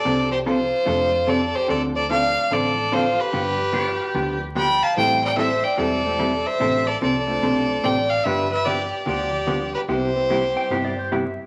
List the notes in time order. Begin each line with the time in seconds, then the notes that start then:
Already playing: A4 D5
0.05 C2 C3 F3 C4 D4 A4
0.32 G4 C5
0.46 C3 F3 C4 D4 F4 A4 C5
0.86 F2 C3 F3 A3 C4 D4 F4 A4
1.27 C3 F3 C4 D4 A4 D5
1.55 G4 C5
1.68 D2 D3 F3 A3 C4 D4 F4 A4 D5
1.96 A4 D5
2.10 D3 F3 C4 D4 A4 D5 F5
2.51 A1 D3 F3 C4 D4 A4 D5
2.92 D3 F3 C4 D4 F4 A4 C5
3.19 G4 B4
3.33 G1 D3 F3 G3 B3 D4 F4 G4
3.72 D3 F3 B3 D4 G4 D5
3.87 G4
4.01 G4
4.14 D2 D3 F3 B3 D4 G4
4.55 D3 F3 B3 D4 G4 G5 B5
4.82 F5 A5
4.97 A1 E3 G3 A3 C4 E4 G4 A4 C5 G5
5.24 D5 G5
5.36 E3 G3 C4 E4 A4 C5 E5
5.64 D5 G5
5.77 E1 E3 G3 C4 E4 A4 D5
6.04 A3 C4 E4 G4
6.19 E3 G3 C4 E4 A4
6.46 C5 E5
6.60 A1 C3 F3 C4 D4 A4
6.87 A4 D5
7.02 C2 C3 F3 C4 D4 A4 D5
7.27 A3 C4 D4 F4
7.43 B1 C3 F3 C4 D4 A4
7.84 A1 C3 F3 C4 D4 A4 D5 G5
8.10 D5 F5
8.24 G1 D3 F3 B3 D4 G4 B4 E5
8.51 B4 E5
8.65 D3 F3 B3 D4 G4 D5
9.06 D2 D3 F3 B3 D4 G4 D5
9.47 D3 F3 G3 B3 D4 F4 G4
9.74 G4 B4
9.88 C2 C3 G3 B3 E4 G4 C5
10.14 G3 B3 C4 E4
10.30 C3 G3 B3 E4 G4
10.54 G3 B3 C4 E4 G5
10.70 G1 C3 G3 B3 E4 G4 E5
10.85 D5
10.99 C5
11.12 C3 G3 B3 E4 G4 E5